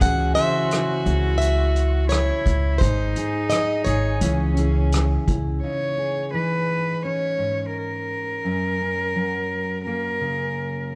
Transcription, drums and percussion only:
0.01 kick medium
0.01 closed hi-hat medium
0.36 closed hi-hat soft
0.71 cross-stick medium
0.71 closed hi-hat medium
1.06 closed hi-hat soft
1.41 closed hi-hat medium
1.76 closed hi-hat soft
2.10 cross-stick medium
2.10 closed hi-hat medium
2.46 kick medium
2.46 closed hi-hat soft
2.81 kick medium
2.81 closed hi-hat medium
3.16 closed hi-hat soft
3.50 cross-stick medium
3.50 closed hi-hat medium
3.86 closed hi-hat soft
4.21 closed hi-hat medium
4.57 closed hi-hat soft
4.92 cross-stick medium
4.92 closed hi-hat medium
5.28 kick medium
5.28 closed hi-hat soft

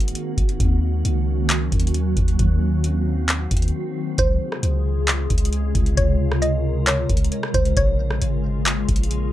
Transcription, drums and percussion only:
0.00 closed hi-hat medium
0.08 closed hi-hat medium
0.15 closed hi-hat medium
0.38 kick medium
0.38 closed hi-hat medium
0.49 closed hi-hat soft
0.60 kick loud
0.60 closed hi-hat medium
1.05 closed hi-hat medium
1.50 clap loud
1.50 closed hi-hat medium
1.72 kick medium
1.72 closed hi-hat medium
1.80 closed hi-hat medium
1.87 closed hi-hat medium
1.94 closed hi-hat medium
2.17 kick loud
2.17 closed hi-hat medium
2.28 closed hi-hat soft
2.39 kick loud
2.39 closed hi-hat medium
2.84 closed hi-hat medium
3.29 clap loud
3.29 closed hi-hat medium
3.51 kick medium
3.51 closed hi-hat medium
3.57 closed hi-hat medium
3.62 closed hi-hat medium
3.68 closed hi-hat soft
4.18 kick loud
4.18 closed hi-hat medium
4.52 cross-stick medium
4.63 closed hi-hat medium
5.08 clap loud
5.08 closed hi-hat medium
5.30 kick loud
5.30 closed hi-hat medium
5.38 closed hi-hat medium
5.45 closed hi-hat medium
5.53 closed hi-hat medium
5.75 kick medium
5.75 closed hi-hat medium
5.86 closed hi-hat soft
5.97 kick loud
5.97 closed hi-hat medium
6.32 cross-stick loud
6.42 closed hi-hat medium
6.87 clap loud
6.87 closed hi-hat medium
7.09 kick loud
7.09 closed hi-hat medium
7.17 closed hi-hat medium
7.25 closed hi-hat medium
7.32 closed hi-hat medium
7.43 cross-stick loud
7.54 kick medium
7.54 closed hi-hat medium
7.65 closed hi-hat soft
7.77 kick loud
7.77 closed hi-hat medium
8.11 cross-stick medium
8.22 closed hi-hat medium
8.66 clap loud
8.66 closed hi-hat medium
8.89 kick loud
8.89 closed hi-hat medium
8.96 closed hi-hat medium
9.03 closed hi-hat medium
9.11 closed hi-hat medium

